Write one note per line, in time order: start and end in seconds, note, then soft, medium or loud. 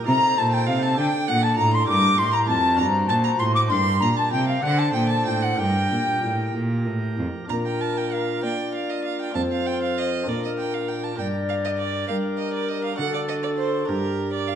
0.03 0.94 D#4 medium
0.03 0.94 A4 medium
0.03 0.96 C5 medium
0.03 0.39 A#5 medium
0.07 0.35 C3 medium
0.07 0.16 C3 medium
0.07 0.40 A#5 loud
0.38 0.70 A#2 medium
0.38 0.66 A#2 medium
0.38 0.51 A5 medium
0.38 0.55 A5 medium
0.51 0.68 G5 medium
0.51 0.67 G5 medium
0.67 0.98 C3 medium
0.67 0.96 C3 medium
0.67 0.84 F5 medium
0.83 0.99 A5 medium
0.83 0.98 A5 medium
0.94 1.82 D4 medium
0.94 1.85 A4 medium
0.94 1.29 G5 medium
0.99 1.07 D3 medium
0.99 1.26 D3 medium
0.99 1.27 G5 loud
1.28 1.56 A#2 medium
1.28 1.59 A#2 medium
1.28 1.44 F#5 medium
1.28 1.45 F#5 loud
1.42 1.56 A5 medium
1.42 1.59 A5 loud
1.57 1.86 A2 medium
1.57 1.88 A2 medium
1.57 1.73 A#5 medium
1.57 1.76 A#5 loud
1.73 1.87 C6 medium
1.73 1.88 C6 medium
1.84 2.16 D4 medium
1.84 2.75 G4 medium
1.84 2.76 A#4 medium
1.84 2.20 D6 loud
1.88 2.16 G2 medium
1.88 2.18 G2 medium
1.88 2.20 D6 loud
2.18 2.50 A2 medium
2.18 2.46 A2 medium
2.18 2.32 C6 medium
2.18 2.36 C6 loud
2.32 2.39 A#5 medium
2.32 2.49 A#5 loud
2.47 2.80 F2 medium
2.47 2.76 F2 medium
2.47 2.77 A5 medium
2.47 2.81 A5 loud
2.75 3.09 G2 medium
2.75 3.07 D4 medium
2.75 3.67 F#4 medium
2.75 3.67 C5 medium
2.75 2.86 A#5 medium
2.79 3.07 G2 medium
2.79 3.10 A#5 loud
3.08 3.40 A#2 medium
3.08 3.37 A#2 medium
3.08 3.26 A5 loud
3.08 3.16 A5 medium
3.24 3.30 A#5 medium
3.24 3.41 A#5 loud
3.39 3.72 A2 medium
3.39 3.68 A2 medium
3.39 3.54 C6 loud
3.39 3.46 C6 medium
3.55 3.61 D6 medium
3.55 3.62 D6 medium
3.68 4.01 G2 medium
3.68 4.29 D4 medium
3.68 4.60 G4 medium
3.68 4.61 A#4 medium
3.68 4.02 C6 loud
3.68 4.04 C6 loud
3.72 4.00 G2 medium
4.00 4.10 A#2 medium
4.00 4.30 A#2 medium
4.00 4.17 A#5 medium
4.00 4.18 A#5 medium
4.17 4.33 A5 medium
4.17 4.32 A5 loud
4.32 4.63 C3 medium
4.32 4.61 C3 medium
4.32 4.48 G5 loud
4.32 4.47 G5 medium
4.48 4.63 F5 medium
4.48 4.64 F5 loud
4.60 4.95 D3 medium
4.60 5.52 D4 medium
4.60 5.55 A4 medium
4.60 5.56 C5 soft
4.60 4.81 F#5 loud
4.64 4.93 D3 medium
4.64 4.80 F#5 medium
4.78 4.92 A5 medium
4.78 4.96 A5 medium
4.93 5.26 A#2 medium
4.93 5.24 A#2 medium
4.93 5.08 G5 medium
4.93 5.13 G5 medium
5.09 5.25 A5 medium
5.09 5.30 A5 medium
5.25 5.56 A2 medium
5.25 5.58 A2 medium
5.25 5.44 G5 medium
5.25 5.46 G5 medium
5.42 5.59 F#5 medium
5.42 5.61 F#5 medium
5.54 6.18 D4 medium
5.54 7.44 G4 medium
5.54 7.45 A#4 soft
5.54 6.54 G5 medium
5.58 5.87 G2 medium
5.58 5.90 G2 medium
5.58 6.55 G5 loud
5.91 6.20 A#2 medium
5.91 5.99 A#2 medium
6.23 6.54 A2 medium
6.23 6.52 A2 medium
6.55 6.88 A#2 medium
6.55 6.84 A#2 medium
6.87 7.19 A2 medium
6.87 7.15 A2 medium
7.19 7.27 F2 medium
7.19 7.47 F2 medium
7.47 8.39 A#2 medium
7.47 9.30 D4 soft
7.47 9.31 F4 soft
7.47 9.31 A#4 soft
7.47 7.56 A#5 medium
7.51 8.39 A#2 soft
7.51 8.45 A#4 medium
7.66 7.82 G5 medium
7.81 7.99 A5 medium
7.97 8.14 G5 medium
8.13 8.43 F5 medium
8.43 9.32 A#3 medium
8.43 9.32 A#3 soft
8.43 9.37 D5 medium
8.43 8.73 G5 medium
8.75 8.91 F5 medium
8.90 9.04 D#5 medium
9.04 9.20 F5 medium
9.21 9.34 G5 medium
9.32 10.24 F2 medium
9.32 10.23 C4 soft
9.32 10.23 F4 soft
9.32 10.25 A4 soft
9.32 10.29 C5 medium
9.32 9.41 A5 medium
9.37 10.24 F2 soft
9.52 9.68 F5 medium
9.66 9.82 G5 medium
9.83 9.99 F5 medium
9.98 10.30 D#5 medium
10.24 11.12 D4 soft
10.24 11.15 F4 soft
10.24 11.15 A#4 soft
10.24 11.17 A#4 medium
10.28 11.15 A#2 medium
10.28 11.15 A#2 soft
10.28 10.43 D5 medium
10.45 10.50 D#5 medium
10.58 10.75 G5 medium
10.74 10.90 F5 medium
10.88 11.05 G5 medium
11.04 11.18 A5 medium
11.14 12.93 D4 soft
11.14 12.94 G4 soft
11.14 12.95 A#4 soft
11.18 12.05 G2 medium
11.18 12.05 G2 soft
11.18 12.07 D5 medium
11.18 11.27 G5 medium
11.49 11.55 F5 medium
11.65 11.71 D#5 medium
11.78 12.07 D5 medium
12.08 12.95 G3 soft
12.08 12.96 G3 medium
12.08 12.98 A#4 medium
12.08 12.16 F5 medium
12.38 12.53 D#5 medium
12.53 12.70 D5 medium
12.69 12.84 D#5 medium
12.84 12.97 F5 medium
12.95 13.83 D4 soft
12.95 13.85 F#4 soft
12.95 13.86 A4 soft
12.95 13.14 F#5 medium
12.99 13.85 D3 medium
12.99 13.85 D3 soft
12.99 13.91 A4 medium
13.14 13.20 D5 medium
13.28 13.35 D#5 medium
13.43 13.49 D5 medium
13.57 13.87 C5 medium
13.85 14.55 G2 medium
13.85 14.55 D4 soft
13.85 14.55 G4 soft
13.85 14.33 A#4 medium
13.85 14.55 A#4 soft
13.89 14.55 G2 soft
13.89 14.52 G4 medium
14.33 14.49 D5 medium
14.48 14.55 F5 medium